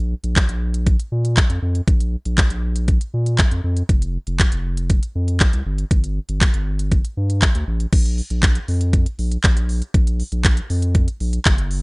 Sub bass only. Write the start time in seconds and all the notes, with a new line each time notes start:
Already playing: A#1
0.24 A#1
0.49 A#1
1.12 A#2
1.49 F2
1.62 F2
1.88 A#1
2.25 A#1
2.50 A#1
3.14 A#2
3.51 F2
3.64 F2
3.89 F1
4.27 F1
4.52 F1
5.15 F2
5.53 C2
5.66 G1
5.91 G1
6.29 G1
6.54 G1
7.17 G2
7.55 D2
7.67 A1
7.93 A#1
8.30 A#1
8.68 F2
9.19 A#1
9.44 A#1
9.94 A#1
10.32 A#1
10.70 F2
11.20 A#1
11.46 F#1